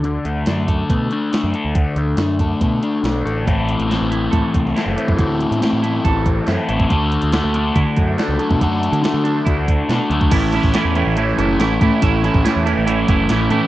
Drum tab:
CC |----------------|----------------|----------------|----------------|
HH |x-x-x-x-x-x-x-x-|x-x-x-x-x-x-x-x-|x-xxx-x-x-x-x-x-|x-xxx-x-x-x-x-x-|
SD |----o-------o---|----o-------o---|----o------oo---|----o-------o---|
BD |------o-o-------|o-----o-o-------|o-------o-o----o|o-------o-o----o|

CC |----------------|----------------|x---------------|----------------|
HH |x-xxx-x-x-x-x-x-|x-xxx-x-x-x-x-x-|x-x-x-x-x-x-x-x-|x-x-x-x-x-x-x-x-|
SD |----o-------o---|----o-------o---|----o----o--o---|----o-------o---|
BD |o-------o-o----o|o-------o-o----o|o--o----------o-|o--o------o-----|